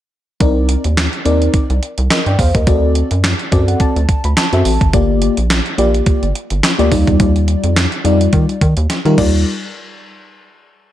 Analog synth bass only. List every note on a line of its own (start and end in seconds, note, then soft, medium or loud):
0.41 0.76 C2 loud
0.85 1.08 D#2 medium
1.26 1.48 D#2 loud
1.70 1.80 C2 medium
1.98 2.08 C2 loud
2.26 2.36 G2 medium
2.39 2.52 E2 medium
2.55 2.65 D#2 medium
2.67 3.03 D2 loud
3.11 3.34 F#2 medium
3.52 3.75 F#2 loud
3.96 4.06 D2 loud
4.24 4.34 D2 medium
4.53 4.63 F#2 loud
4.65 4.78 A1 medium
4.81 4.91 G#1 medium
4.94 5.29 G1 loud
5.38 5.61 A#1 medium
5.78 6.01 A#1 loud
6.23 6.33 G1 medium
6.51 6.61 G1 loud
6.79 6.89 D2 medium
6.92 7.04 D#2 loud
7.08 7.18 E2 medium
7.20 7.56 D#2 loud
7.64 7.87 F2 medium
8.05 8.28 F2 loud
8.33 8.46 D#3 loud
8.61 8.74 D#3 medium
8.77 8.87 D#2 loud
9.05 9.15 D#3 loud
9.18 9.44 D#2 loud